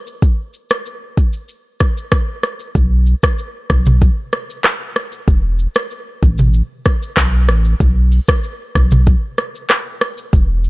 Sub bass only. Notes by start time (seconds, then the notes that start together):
2.75 B1
3.70 B1
5.28 E1
6.23 A1
7.17 B1
7.49 A1
7.80 B1
8.75 B1
10.33 E1